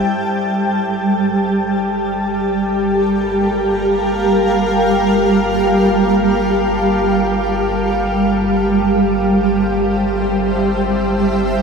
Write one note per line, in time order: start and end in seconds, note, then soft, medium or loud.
0.00 0.21 G3 medium
0.00 0.21 G4 medium
0.00 2.78 G5 medium
0.00 11.62 A5 medium
0.08 11.62 G1 medium
0.08 11.62 G3 medium
0.34 11.62 G4 medium
2.23 8.86 A#4 medium
2.70 9.70 F5 medium
8.52 11.62 C5 medium
9.38 11.62 E5 medium